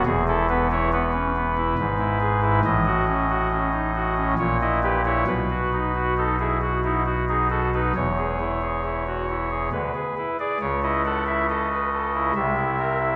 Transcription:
<<
  \new Staff \with { instrumentName = "Pipe organ" } { \time 3/4 \key e \major \tempo 4 = 68 << { gis'16 a'16 b'16 cis''16 b'2 | dis''2 cis''16 dis''16 b'16 cis''16 | b'4 a'16 gis'16 fis'16 e'16 fis'16 gis'16 a'16 b'16 | cis''2 b'8. d''16 |
cis''16 dis''16 fis''16 e''16 dis''4 e''4 | } \\ { e,16 e'16 b16 e'16 b16 cis'16 b16 e'16 gis,16 e'16 gis'16 e'16 | a,16 fis'16 cis'16 fis'16 cis'16 dis'16 fis'16 cis'16 ais,16 e'16 g'16 e'16 | b,16 fis'16 dis'16 fis'16 dis'16 e'16 r16 dis'16 r16 dis'16 fis'16 dis'16 | e,16 gis'16 e'16 gis'16 e'16 fis'16 e'16 gis'16 d16 gis'16 e'16 gis'16 |
cis16 e'16 a'16 e'16 a'16 b'16 a'16 e'16 c16 e'16 bes'16 e'16 | } >> }
  \new Staff \with { instrumentName = "Pipe organ" } { \clef bass \time 3/4 \key e \major e,,2 gis,,4 | a,,2 ais,,4 | b,,2. | e,,2 d,16 r8. |
cis,2 c,4 | }
>>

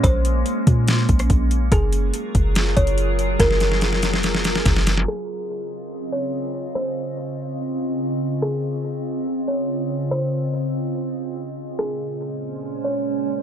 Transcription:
<<
  \new Staff \with { instrumentName = "Kalimba" } { \time 4/4 \key des \major \tempo 4 = 143 c''1 | aes'2~ aes'8 des''8 r4 | bes'1 | aes'2~ aes'8 des''8 r4 |
c''1 | aes'2~ aes'8 des''8 r4 | c''1 | aes'2~ aes'8 des''8 r4 | }
  \new Staff \with { instrumentName = "Ambient pad" } { \time 4/4 \key des \major <aes bes des'>1 | <ges f' aes' bes'>1~ | <ges f' aes' bes'>1 | <des c' f' ees''>1~ |
<des c' f' ees''>1~ | <des c' f' ees''>1~ | <des c' f' ees''>1 | <bes, aes des' c''>1 | }
  \new Staff \with { instrumentName = "808-style bass" } { \clef bass \time 4/4 \key des \major bes,,4 r8 bes,4 bes,,8 bes,,4 | ges,,4 r8 ges,,4 ges,,4. | ges,,2. ges,,4 | r1 |
r1 | r1 | r1 | r1 | }
  \new DrumStaff \with { instrumentName = "Drums" } \drummode { \time 4/4 <hh bd>8 hh8 hh8 <hh bd>8 <hh sn>8 <hh bd>16 <hh ss>16 <hh bd>8 hh8 | <hh bd>8 hh8 hh8 <hh bd>8 <hh sn>8 <hh bd>16 hh16 hh8 hh8 | <hh bd sn>16 sn16 <hh sn>16 sn16 <hh sn>16 sn16 <hh sn>16 sn16 <hh sn>16 sn16 <hh sn>16 sn16 <hh bd sn>16 sn16 <hh sn>16 sn16 | r4 r4 r4 r4 |
r4 r4 r4 r4 | r4 r4 r4 r4 | r4 r4 r4 r4 | r4 r4 r4 r4 | }
>>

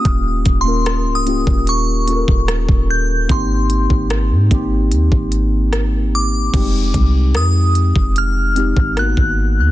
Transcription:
<<
  \new Staff \with { instrumentName = "Synth bell" } { \time 4/4 \key f \minor \tempo 4 = 74 \tuplet 3/2 { ees'''4 c'''8~ c'''8 ees'''4 } des'''4. g'''8 | c'''2. r8 d'''8~ | d'''4 ees'''4 f'''4 ges'''4 | }
  \new Staff \with { instrumentName = "Synth keys" } { \time 4/4 \key f \minor <bes des' f' g'>8 r16 <bes des' f' bes'>8 r16 <bes des' f' g'>8. r16 <bes des' f' a' bes'>4 r8 | <bes c' ees' g'>8 r16 <bes c' ees' g'>8 r16 <bes c' ees' g'>4~ <bes c' ees' g'>16 r4 r16 | <g aes c' ees' g'>4~ <g aes c' ees' g'>16 r4 r16 <aes c' ees' g'>8 <bes ces' ees' ges'>8. r16 | }
  \new Staff \with { instrumentName = "808-style bass" } { \clef bass \time 4/4 \key f \minor ees,,8 ees,,8. des,,8 ees,,4 ees,,8 ees,,8. | aes,,8. aes,,8 aes,16 aes,,8 ees,16 aes,,4.~ aes,,16 | f,,8 c,8 f,8. f,,4 aes,,8 aes,,8 ees,16 | }
  \new DrumStaff \with { instrumentName = "Drums" } \drummode { \time 4/4 <hh bd>8 <hh bd>8 <hh ss>8 hh16 bd16 hh8 hh16 bd16 <hh ss>16 bd8. | <hh bd>8 hh16 bd16 <hh ss>8 <hh bd>8 hh16 bd16 hh8 <hh ss>4 | <cymc hh bd>8 <hh bd>8 <hh ss>8 hh16 bd16 hh8 hh16 bd16 <hh ss>16 bd8. | }
>>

